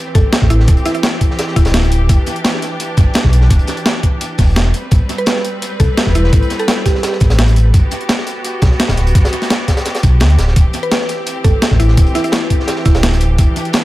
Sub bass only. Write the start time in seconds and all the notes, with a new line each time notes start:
0.15 G1
0.42 A1
0.68 D1
1.56 D1
2.09 E1
2.97 G1
3.24 B1
3.50 E1
4.39 E1
4.92 A1
5.80 C2
6.07 E1
6.33 A1
7.21 A1
7.74 G1
8.62 B1
8.89 D1
9.15 G1
10.03 B1
10.21 D2
10.39 D1
10.56 D1
11.44 G1
11.71 A1
11.97 D1
12.86 D1
13.39 E1